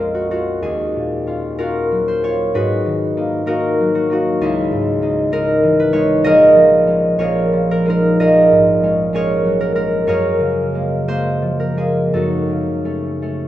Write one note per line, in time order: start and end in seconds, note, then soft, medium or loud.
0.00 0.66 A#1 soft
0.00 0.66 F2 soft
0.00 0.31 F3 soft
0.00 0.66 G#3 soft
0.00 0.29 C#4 medium
0.00 0.31 F4 medium
0.00 0.61 G#4 soft
0.00 1.57 A#4 medium
0.00 0.66 C5 medium
0.00 0.42 C#5 medium
0.14 0.30 F#4 soft
0.31 1.25 C#4 soft
0.31 1.26 F4 soft
0.31 1.59 F#4 medium
0.62 2.57 D#2 soft
0.62 2.26 G#4 medium
0.95 2.57 A#2 soft
1.27 1.58 C#4 soft
1.27 1.58 F4 soft
1.58 2.23 C#4 soft
1.58 2.23 F4 medium
1.58 2.54 F#4 medium
1.58 3.45 A#4 medium
1.91 3.79 F#3 soft
2.08 2.34 C5 medium
2.23 2.57 C#4 soft
2.23 2.58 F4 soft
2.23 2.57 C#5 medium
2.54 4.45 G#2 medium
2.54 3.46 F#4 medium
2.54 4.40 G#4 medium
2.54 5.78 B4 medium
2.86 4.45 D#3 soft
3.17 3.45 A#3 soft
3.17 3.47 D#4 soft
3.46 4.09 A#3 soft
3.46 4.10 D#4 medium
3.46 3.94 F#4 medium
3.46 4.44 A#4 medium
3.80 4.44 F#3 soft
3.95 4.10 F#4 medium
4.10 4.44 A#3 soft
4.10 4.41 D#4 soft
4.10 4.44 F#4 medium
4.41 6.26 C#2 medium
4.41 5.01 D#4 medium
4.41 6.27 E4 medium
4.41 6.25 G#4 medium
4.72 6.26 G#2 soft
5.02 5.31 G#3 soft
5.02 5.31 D#4 soft
5.32 5.92 G#3 soft
5.32 5.93 D#4 medium
5.32 6.10 A#4 medium
5.63 6.27 E3 soft
5.80 6.27 B4 medium
5.93 6.86 G#3 soft
5.93 6.27 D#4 medium
5.93 7.17 C#5 medium
6.24 7.17 A#1 medium
6.24 7.19 G#4 medium
6.24 7.19 A#4 medium
6.24 7.90 D#5 loud
6.55 7.51 F3 soft
6.87 7.85 G#3 soft
6.87 8.82 C#4 soft
7.18 8.19 A#1 medium
7.18 8.20 G#4 medium
7.18 7.70 A#4 medium
7.18 9.13 C#5 medium
7.53 8.24 F3 soft
7.71 7.87 A#4 medium
7.86 8.82 G#3 soft
7.86 10.10 D#4 soft
7.90 8.20 A#4 medium
8.20 10.10 A#1 medium
8.20 9.14 G#4 medium
8.20 9.14 A#4 medium
8.20 10.09 D#5 medium
8.51 10.09 G#2 soft
8.83 9.12 G#3 soft
8.83 9.13 C#4 soft
9.13 9.74 G#3 soft
9.13 9.75 C#4 medium
9.13 10.07 G#4 medium
9.13 9.59 A#4 medium
9.13 10.06 C#5 medium
9.44 13.34 F#3 soft
9.61 9.74 A#4 medium
9.75 10.74 G#3 soft
9.75 12.84 C#4 soft
9.75 10.08 A#4 medium
10.07 12.12 F#2 medium
10.07 11.76 G#4 medium
10.07 11.58 A#4 medium
10.07 13.48 C#5 medium
10.39 12.16 C#3 soft
10.75 11.06 G#3 soft
10.75 11.07 A#3 soft
11.08 11.76 G#3 soft
11.08 11.76 A#3 soft
11.08 11.97 C5 medium
11.42 12.16 F3 soft
11.60 12.16 A#4 medium
11.77 12.16 G#3 soft
11.77 12.16 A#3 soft
11.77 12.16 G#4 medium
12.13 13.48 F#2 soft
12.13 13.48 D#4 soft
12.13 13.48 F#4 soft
12.13 13.48 A4 medium
12.49 13.48 C#3 soft
12.85 13.21 A3 soft
12.85 13.21 C#4 soft
13.22 13.48 A3 soft
13.22 13.48 C#4 soft